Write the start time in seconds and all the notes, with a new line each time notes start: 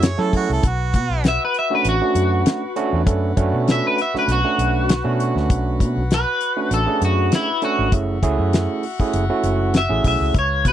Already playing: F#2 A3 G#4 E5 G#5
0.02 C#5, snare, closed hi-hat
0.18 F#3 A3 C#4 E4 A4, snare
0.33 F#4, kick, open hi-hat
0.50 C2 A4
0.63 B1 F#4 B4 F#5, kick, closed hi-hat
0.94 B2 F#4, kick, closed hi-hat
1.10 B1
1.24 snare, closed hi-hat
1.28 E5
1.45 B4
1.54 closed hi-hat
1.59 E5
1.70 A3 C#4 D4 F#4
1.75 B4
1.85 A1, closed hi-hat
1.89 F#4
2.01 A3 C#4 D4 F#4
2.15 F#2, closed hi-hat
2.46 snare, closed hi-hat
2.76 A3 C#4 D4 F#4, closed hi-hat
2.93 E2
3.06 F#2 A3 C#4 D4 A4, kick, closed hi-hat
3.37 F#2 A3 C#4 D4 F#4, kick, closed hi-hat
3.53 B2
3.68 E5, snare, closed hi-hat
3.87 B4
3.98 E5, closed hi-hat
4.14 A3 C#4 D4 F#4, muted fingered electric bass stroke, snare
4.19 B4
4.28 B1, closed hi-hat
4.32 F#4
4.44 A3 C#4 D4 F#4
4.58 B1, closed hi-hat
4.89 snare, closed hi-hat
5.04 B2 A3 C#4 D4 F#4
5.20 closed hi-hat
5.35 D2, snare
5.50 B1, kick, closed hi-hat
5.80 B2, kick, closed hi-hat
5.96 B1
6.11 B4, snare, closed hi-hat
6.41 closed hi-hat
6.57 A3 C#4 D4 F#4
6.71 A1 A4, closed hi-hat
6.87 A3 C#4 D4 G#4
7.01 F#2 F#4, closed hi-hat
7.32 E4, snare, closed hi-hat
7.62 A3 C#4 D4 F#4 A4, closed hi-hat
7.79 G#1
7.92 F#1 A3 C#4 E4 F#4 G#4 E5 F#5, kick, closed hi-hat
8.22 C#2 A3 C#4 E4 G#4, kick, closed hi-hat
8.39 F#2
8.53 snare, closed hi-hat
8.83 open hi-hat
9.00 A3 C#4 E4 G#4, muted fingered electric bass stroke, kick
9.13 F#1, closed hi-hat
9.29 A3 C#4 E4 F#4
9.43 F#1, closed hi-hat
9.74 E5, snare, closed hi-hat
9.89 A1 A3 C#4 E4 G#4
10.04 B1 E5, kick, open hi-hat
10.21 C#2
10.34 C#2 F4 B4 C#5 F5, kick, closed hi-hat
10.39 C#5
10.65 C#3 C#5, kick, closed hi-hat